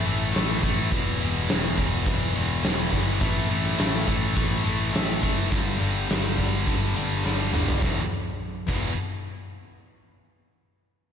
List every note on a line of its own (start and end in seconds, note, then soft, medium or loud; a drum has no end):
0.05 0.33 A1 loud
0.05 0.32 A2 medium
0.05 0.34 E3 medium
0.05 0.34 A3 medium
0.05 closed hi-hat medium
0.33 0.62 A1 medium
0.33 0.61 A2 medium
0.33 0.62 E3 medium
0.33 0.62 A3 medium
0.33 snare loud
0.33 closed hi-hat medium
0.62 0.89 A1 medium
0.62 0.90 A2 medium
0.62 0.92 E3 medium
0.62 0.90 A3 loud
0.62 kick medium
0.62 closed hi-hat medium
0.91 1.18 E1 medium
0.91 1.19 E2 loud
0.91 1.20 B2 loud
0.91 1.21 E3 loud
0.91 kick loud
0.91 closed hi-hat medium
1.20 1.48 E1 medium
1.20 1.47 E2 medium
1.20 1.48 B2 medium
1.20 1.49 E3 medium
1.20 closed hi-hat medium
1.48 1.76 E1 medium
1.48 1.76 E2 medium
1.48 1.77 B2 medium
1.48 1.78 E3 loud
1.48 snare loud
1.48 closed hi-hat medium
1.77 2.04 E1 medium
1.77 2.05 E2 medium
1.77 2.05 B2 medium
1.77 2.06 E3 medium
1.77 kick medium
1.77 closed hi-hat medium
2.06 2.32 E1 medium
2.06 2.33 E2 loud
2.06 2.34 B2 loud
2.06 2.35 E3 loud
2.06 kick loud
2.06 closed hi-hat medium
2.34 2.62 E1 loud
2.34 2.62 E2 medium
2.34 2.63 B2 medium
2.34 2.64 E3 medium
2.34 closed hi-hat medium
2.64 2.91 E1 medium
2.64 2.90 E2 medium
2.64 2.92 B2 medium
2.64 2.92 E3 medium
2.64 snare loud
2.64 closed hi-hat medium
2.92 3.19 G1 medium
2.92 3.19 E2 medium
2.92 3.20 B2 medium
2.92 3.20 E3 loud
2.92 kick medium
2.92 closed hi-hat medium
3.20 3.47 A1 medium
3.20 3.48 A2 medium
3.20 3.48 E3 loud
3.20 3.49 A3 loud
3.20 kick loud
3.20 closed hi-hat medium
3.49 3.77 A1 medium
3.49 3.77 A2 medium
3.49 3.77 E3 medium
3.49 3.78 A3 medium
3.49 closed hi-hat medium
3.65 snare soft
3.78 4.05 A1 medium
3.78 4.05 A2 medium
3.78 4.06 E3 medium
3.78 4.06 A3 medium
3.78 snare loud
3.78 closed hi-hat medium
4.06 4.34 A1 medium
4.06 4.34 A2 medium
4.06 4.35 E3 medium
4.06 4.35 A3 medium
4.06 kick medium
4.06 closed hi-hat medium
4.35 4.62 A1 medium
4.35 4.62 A2 medium
4.35 4.63 E3 loud
4.35 4.63 A3 loud
4.35 kick loud
4.35 closed hi-hat medium
4.63 4.92 A1 medium
4.63 4.91 A2 medium
4.63 4.92 E3 medium
4.63 4.92 A3 medium
4.63 closed hi-hat medium
4.92 5.20 A1 medium
4.92 5.20 A2 medium
4.92 5.20 E3 medium
4.92 5.21 A3 medium
4.92 snare loud
4.92 closed hi-hat medium
5.21 5.49 F#1 medium
5.21 5.49 A2 medium
5.21 5.49 E3 medium
5.21 5.50 A3 medium
5.21 kick medium
5.21 closed hi-hat medium
5.51 5.78 G1 medium
5.51 5.79 G2 loud
5.51 5.80 D3 loud
5.51 5.80 G3 loud
5.51 kick loud
5.51 closed hi-hat medium
5.80 6.07 G1 medium
5.80 6.08 G2 medium
5.80 6.08 D3 medium
5.80 6.09 G3 medium
5.80 closed hi-hat medium
6.09 6.35 G1 medium
6.09 6.37 G2 medium
6.09 6.38 D3 medium
6.09 6.39 G3 medium
6.09 snare loud
6.09 closed hi-hat medium
6.38 6.64 G1 medium
6.38 6.66 G2 medium
6.38 6.66 D3 medium
6.38 6.67 G3 medium
6.38 kick medium
6.38 closed hi-hat medium
6.67 6.93 G1 medium
6.67 6.94 G2 medium
6.67 6.95 D3 medium
6.67 6.95 G3 medium
6.67 kick loud
6.67 closed hi-hat medium
6.96 7.22 G1 medium
6.96 7.23 G2 medium
6.96 7.24 D3 medium
6.96 7.25 G3 medium
6.96 closed hi-hat medium
7.24 7.51 G1 medium
7.24 7.52 G2 medium
7.24 7.53 D3 medium
7.24 7.54 G3 medium
7.24 snare medium
7.53 7.79 G1 medium
7.53 7.80 G2 medium
7.53 7.81 D3 medium
7.53 7.81 G3 medium
7.53 mid tom medium
7.68 floor tom medium
7.81 7.98 E1 medium
7.81 7.99 E2 loud
7.81 8.00 B2 loud
7.81 8.00 E3 loud
7.81 kick loud
7.81 snare medium
8.67 8.95 E1 medium
8.67 8.91 E2 medium
8.67 8.91 B2 medium
8.67 8.92 E3 loud
8.67 kick medium
8.67 crash medium